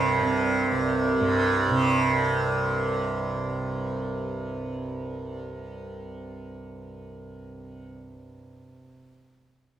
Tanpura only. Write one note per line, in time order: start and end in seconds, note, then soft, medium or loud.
0.00 0.71 C2 medium
0.00 1.20 G2 medium
0.00 0.22 C3 medium
0.22 1.71 C3 medium
0.72 7.87 C2 medium
1.20 8.35 G2 medium
1.71 8.86 C3 medium